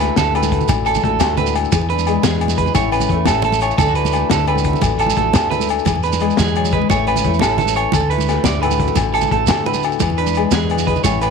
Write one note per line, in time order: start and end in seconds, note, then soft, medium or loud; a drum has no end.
0.00 0.67 D3 medium
0.00 1.02 A3 medium
0.00 0.87 E4 medium
0.00 0.51 F#4 medium
0.00 0.16 B4 medium
0.00 snare soft
0.00 closed hi-hat soft
0.00 low agogo medium
0.00 shekere soft
0.16 0.61 D2 medium
0.16 0.34 A4 medium
0.16 snare medium
0.16 closed hi-hat medium
0.16 muted conga medium
0.16 low conga medium
0.16 shekere medium
0.35 0.69 A2 medium
0.35 1.37 A4 medium
0.35 0.68 B4 medium
0.35 closed hi-hat soft
0.35 low conga soft
0.35 low agogo medium
0.43 high conga medium
0.43 shekere medium
0.52 0.68 F#4 medium
0.52 kick medium
0.52 closed hi-hat soft
0.61 low conga medium
0.61 shekere soft
0.68 0.99 A1 medium
0.68 1.72 D3 medium
0.68 1.03 F#4 medium
0.68 kick medium
0.68 closed hi-hat medium
0.68 muted conga medium
0.68 low agogo medium
0.68 shekere loud
0.85 1.90 E4 soft
0.85 1.03 A4 medium
0.85 closed hi-hat soft
0.85 low conga soft
0.85 low agogo medium
0.85 shekere soft
0.94 high conga medium
0.94 low conga medium
0.94 shekere medium
1.04 1.21 A1 medium
1.04 1.71 A3 medium
1.04 1.54 F#4 medium
1.04 1.37 A4 medium
1.04 kick medium
1.04 closed hi-hat soft
1.04 low conga soft
1.20 1.65 D2 medium
1.20 snare medium
1.20 closed hi-hat medium
1.20 muted conga loud
1.20 low agogo medium
1.20 shekere medium
1.37 1.72 A2 medium
1.37 1.73 A4 medium
1.37 1.54 B4 medium
1.37 closed hi-hat soft
1.37 low conga loud
1.37 shekere soft
1.46 high conga medium
1.46 low conga soft
1.46 shekere medium
1.55 1.71 F#4 medium
1.55 closed hi-hat medium
1.55 low agogo medium
1.55 shekere soft
1.65 shekere soft
1.72 2.16 E2 loud
1.72 3.79 E3 medium
1.72 2.07 G#4 medium
1.72 kick medium
1.72 closed hi-hat medium
1.72 muted conga medium
1.72 low conga soft
1.72 low agogo medium
1.72 shekere loud
1.82 low conga medium
1.90 2.75 D4 medium
1.90 2.23 B4 medium
1.90 closed hi-hat medium
1.98 high conga medium
1.98 shekere medium
2.07 2.74 G#3 medium
2.07 2.58 G#4 medium
2.07 closed hi-hat medium
2.07 low agogo medium
2.07 shekere soft
2.23 2.68 E2 loud
2.23 2.57 G#4 medium
2.23 snare loud
2.23 closed hi-hat medium
2.23 muted conga medium
2.23 low conga loud
2.23 shekere loud
2.40 2.74 B2 medium
2.40 2.74 B4 medium
2.40 closed hi-hat medium
2.40 low conga soft
2.40 low agogo medium
2.48 high conga medium
2.48 shekere medium
2.58 2.75 G#4 medium
2.58 2.75 B4 medium
2.58 kick medium
2.58 closed hi-hat medium
2.66 low conga medium
2.66 shekere soft
2.75 3.05 A1 loud
2.75 3.28 A2 medium
2.75 3.13 E4 medium
2.75 2.92 C#5 medium
2.75 kick medium
2.75 closed hi-hat medium
2.75 muted conga medium
2.75 low agogo medium
2.75 shekere loud
2.92 3.78 C#4 soft
2.92 3.26 B4 medium
2.92 closed hi-hat soft
2.92 low conga soft
2.92 low agogo medium
2.92 shekere soft
3.00 high conga medium
3.00 low conga medium
3.00 shekere medium
3.09 3.28 E2 loud
3.09 3.78 A3 medium
3.09 kick medium
3.09 closed hi-hat soft
3.09 low conga soft
3.13 3.80 E4 medium
3.25 3.71 A1 medium
3.25 3.45 A2 medium
3.25 3.44 A4 medium
3.25 snare medium
3.25 closed hi-hat medium
3.25 muted conga loud
3.25 low agogo medium
3.25 shekere medium
3.42 3.62 B2 medium
3.42 3.61 A4 medium
3.42 closed hi-hat soft
3.42 low conga loud
3.42 shekere soft
3.52 high conga medium
3.52 low conga soft
3.52 shekere medium
3.61 3.80 C#3 medium
3.61 3.78 C#5 medium
3.61 closed hi-hat medium
3.61 low agogo medium
3.61 shekere soft
3.71 shekere soft
3.78 4.23 D2 loud
3.78 4.82 D3 medium
3.78 3.88 E4 medium
3.78 3.95 A4 loud
3.78 kick loud
3.78 closed hi-hat medium
3.78 muted conga loud
3.78 low conga soft
3.78 low agogo medium
3.78 shekere loud
3.87 4.14 F#4 medium
3.87 low conga medium
3.95 5.00 E4 medium
3.95 4.29 B4 medium
3.95 closed hi-hat medium
4.05 high conga medium
4.05 shekere medium
4.12 5.16 A3 medium
4.12 4.65 F#4 medium
4.12 closed hi-hat soft
4.12 low agogo medium
4.12 shekere soft
4.30 4.74 D2 loud
4.30 4.48 A4 medium
4.30 snare medium
4.30 closed hi-hat medium
4.30 muted conga loud
4.30 low conga loud
4.30 shekere loud
4.47 4.83 A2 medium
4.47 5.52 A4 medium
4.47 4.81 B4 medium
4.47 closed hi-hat soft
4.47 low conga soft
4.47 low agogo medium
4.56 high conga medium
4.56 shekere medium
4.64 4.82 F#4 medium
4.64 kick medium
4.64 closed hi-hat medium
4.73 low conga medium
4.73 shekere soft
4.81 5.12 A1 medium
4.81 5.86 D3 medium
4.81 5.17 F#4 medium
4.81 kick medium
4.81 closed hi-hat medium
4.81 muted conga medium
4.81 low agogo medium
4.81 shekere loud
4.99 6.05 E4 medium
4.99 5.16 A4 medium
4.99 closed hi-hat medium
4.99 low conga soft
4.99 low agogo medium
4.99 shekere soft
5.06 high conga medium
5.06 low conga medium
5.06 shekere medium
5.16 5.36 A1 medium
5.16 5.85 A3 medium
5.16 5.69 F#4 medium
5.16 5.50 A4 medium
5.16 kick medium
5.16 closed hi-hat soft
5.16 low conga soft
5.33 5.79 D2 medium
5.33 snare medium
5.33 closed hi-hat medium
5.33 muted conga loud
5.33 low agogo medium
5.33 shekere loud
5.50 5.87 A4 medium
5.50 5.68 B4 medium
5.50 closed hi-hat soft
5.50 low conga loud
5.50 shekere soft
5.60 high conga medium
5.60 low conga soft
5.60 shekere medium
5.69 5.85 F#4 medium
5.69 closed hi-hat medium
5.69 low agogo medium
5.69 shekere soft
5.79 shekere soft
5.85 6.30 E2 loud
5.85 6.38 E3 medium
5.85 6.20 G#4 medium
5.85 kick medium
5.85 closed hi-hat medium
5.85 muted conga medium
5.85 low conga soft
5.85 low agogo medium
5.85 shekere medium
5.95 low conga medium
6.03 6.89 D4 medium
6.03 6.37 B4 medium
6.03 closed hi-hat soft
6.03 shekere soft
6.12 high conga medium
6.12 shekere medium
6.20 6.73 G#3 medium
6.20 6.88 G#4 medium
6.20 closed hi-hat soft
6.20 low agogo medium
6.30 shekere soft
6.37 6.83 E2 medium
6.37 6.55 E3 medium
6.37 6.71 G#4 medium
6.37 snare medium
6.37 closed hi-hat medium
6.37 muted conga medium
6.37 low conga medium
6.37 shekere loud
6.48 shekere soft
6.55 6.73 F#3 medium
6.55 closed hi-hat soft
6.55 low conga soft
6.55 low agogo medium
6.64 high conga medium
6.64 shekere medium
6.72 6.91 G#3 medium
6.72 6.89 B4 medium
6.72 kick medium
6.72 closed hi-hat soft
6.82 low conga medium
6.89 7.20 A1 loud
6.89 7.95 A2 medium
6.89 7.26 E4 medium
6.89 7.07 C#5 medium
6.89 kick medium
6.89 closed hi-hat medium
6.89 muted conga medium
6.89 low agogo medium
6.89 shekere loud
6.99 low conga soft
7.07 7.93 C#4 medium
7.07 7.40 B4 medium
7.07 closed hi-hat soft
7.07 low conga soft
7.07 low agogo medium
7.16 high conga medium
7.16 low conga medium
7.16 shekere medium
7.24 7.44 E2 medium
7.24 7.92 A3 medium
7.24 7.94 E4 medium
7.24 kick medium
7.24 closed hi-hat soft
7.24 low conga soft
7.32 low conga soft
7.32 shekere soft
7.39 7.86 A1 medium
7.39 7.57 A4 medium
7.39 snare medium
7.39 closed hi-hat medium
7.39 muted conga medium
7.39 low conga soft
7.39 low agogo medium
7.39 shekere loud
7.58 7.94 E3 medium
7.58 7.75 A4 medium
7.58 7.92 B4 medium
7.58 closed hi-hat medium
7.58 low conga loud
7.58 shekere soft
7.66 high conga medium
7.66 shekere medium
7.76 7.93 C#5 medium
7.76 closed hi-hat soft
7.76 low agogo medium
7.83 low conga soft
7.92 8.38 D2 loud
7.92 8.96 D3 medium
7.92 8.10 A4 medium
7.92 muted nylon-string guitar stroke medium
7.92 kick medium
7.92 closed hi-hat medium
7.92 muted conga loud
7.92 low conga soft
7.92 low agogo medium
7.92 shekere medium
8.01 low conga medium
8.10 9.16 E4 medium
8.10 8.43 B4 medium
8.10 closed hi-hat medium
8.18 high conga medium
8.18 shekere medium
8.29 9.30 A3 medium
8.29 8.81 F#4 medium
8.29 snare soft
8.29 closed hi-hat soft
8.29 low agogo medium
8.29 shekere soft
8.44 8.90 D2 loud
8.44 8.61 D5 medium
8.44 snare medium
8.44 closed hi-hat medium
8.44 muted conga medium
8.44 low conga medium
8.44 shekere loud
8.62 8.98 A2 medium
8.62 9.66 A4 medium
8.62 8.95 B4 medium
8.62 closed hi-hat medium
8.62 low conga soft
8.62 low agogo medium
8.71 high conga medium
8.71 shekere medium
8.80 8.97 F#4 medium
8.80 kick medium
8.80 closed hi-hat medium
8.87 low conga medium
8.87 shekere soft
8.96 9.27 A1 loud
8.96 10.01 D3 medium
8.96 9.31 F#4 medium
8.96 kick medium
8.96 closed hi-hat medium
8.96 muted conga loud
8.96 low agogo medium
8.96 shekere loud
9.13 10.19 E4 medium
9.13 9.31 A4 medium
9.13 closed hi-hat soft
9.13 low conga soft
9.13 low agogo medium
9.13 shekere soft
9.21 high conga medium
9.21 low conga medium
9.21 shekere medium
9.31 9.50 A1 medium
9.31 9.99 A3 medium
9.31 9.83 F#4 medium
9.31 9.65 A4 medium
9.31 kick medium
9.31 closed hi-hat soft
9.31 low conga soft
9.47 9.94 D2 medium
9.47 snare medium
9.47 closed hi-hat medium
9.47 muted conga medium
9.47 low agogo medium
9.47 shekere loud
9.66 10.01 A2 medium
9.66 10.02 A4 medium
9.66 9.83 B4 medium
9.66 closed hi-hat soft
9.66 low conga loud
9.74 high conga medium
9.74 low conga soft
9.74 shekere medium
9.82 9.99 F#4 medium
9.82 closed hi-hat medium
9.82 low agogo medium
9.82 shekere soft
9.92 shekere soft
10.00 10.45 E2 loud
10.00 11.30 E3 medium
10.00 10.36 G#4 medium
10.00 kick medium
10.00 closed hi-hat medium
10.00 muted conga medium
10.00 low conga soft
10.00 low agogo medium
10.00 shekere medium
10.10 low conga medium
10.18 11.03 D4 medium
10.18 10.51 B4 medium
10.18 closed hi-hat medium
10.27 high conga medium
10.27 shekere medium
10.34 11.04 G#3 medium
10.34 10.87 G#4 medium
10.34 closed hi-hat soft
10.34 low agogo medium
10.34 shekere soft
10.51 10.96 E2 medium
10.51 10.86 G#4 medium
10.51 snare medium
10.51 closed hi-hat medium
10.51 muted conga medium
10.51 low conga medium
10.51 shekere loud
10.70 11.03 B2 medium
10.70 11.04 B4 medium
10.70 closed hi-hat medium
10.70 low conga soft
10.70 low agogo medium
10.78 high conga medium
10.78 shekere medium
10.87 11.03 G#4 medium
10.87 11.03 B4 medium
10.87 kick medium
10.87 closed hi-hat medium
10.96 low conga medium
10.96 shekere soft
11.04 11.30 A1 loud
11.04 11.30 A2 medium
11.04 11.30 E4 medium
11.04 11.21 C#5 medium
11.04 kick medium
11.04 closed hi-hat medium
11.04 muted conga medium
11.04 low agogo medium
11.04 shekere loud
11.21 11.30 C#4 medium
11.21 11.30 B4 medium
11.21 closed hi-hat medium
11.21 low agogo medium
11.21 shekere soft